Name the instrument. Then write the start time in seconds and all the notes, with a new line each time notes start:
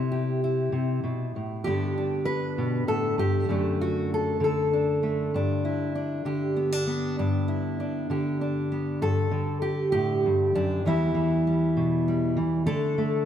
steel-string acoustic guitar
Already playing: C3 E4 G4
0.12 G4
0.44 E4
0.72 C3
1.04 B2
1.36 A2
1.64 G2 D3 B3 D4 G4
1.98 D4
2.25 B4
2.58 B2
2.87 A2 A4
3.18 G2 G4
3.49 F#2 D3 A3 D4
3.81 F#4
4.14 A4
4.40 D3 A4
4.73 D4
5.03 A3
5.34 G2 D4
5.65 E4
5.95 D4
6.25 D3 G4
6.56 B3
6.72 D4
6.87 B3
7.19 G2 D4
7.48 E4
7.80 D4
8.10 D3 G4
8.41 D4
8.72 B3
9.02 G2 A4
9.31 D3
9.62 G4
9.92 A2 G4
10.26 G2
10.55 F#2 D4
10.85 E2 E3 G3 B3 E4
11.15 E3
11.47 G3
11.77 B2
12.08 G3
12.37 E3
12.66 D3 A3 D4 A4
12.98 A3